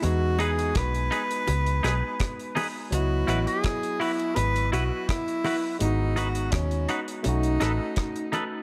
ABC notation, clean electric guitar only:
X:1
M:4/4
L:1/8
Q:1/4=83
K:E
V:1 name="Clean electric guitar"
z [DGB] z [DGB] z [DGB] z [DGB] | z [EFB] z [EFB] z [EFB] z [EFB] | z [DFB] z [DFB] z [DAB] z [DAB] |]